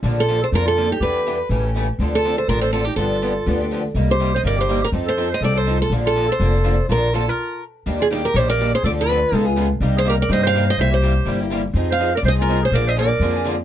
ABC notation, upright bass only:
X:1
M:4/4
L:1/8
Q:"Swing" 1/4=246
K:Bb
V:1 name="Upright bass" clef=bass
B,,,4 F,,4 | =E,,4 A,,,4 | D,,4 A,,,4 | G,,,4 D,,4 |
C,,4 G,,,4 | F,,4 C,,4 | B,,,4 F,,,4 | B,,,4 z4 |
[K:Eb] E,,4 B,,,4 | D,,4 _D,,4 | C,,4 G,,4 | C,,4 G,,,4 |
F,,4 C,,4 | B,,,4 F,,4 |]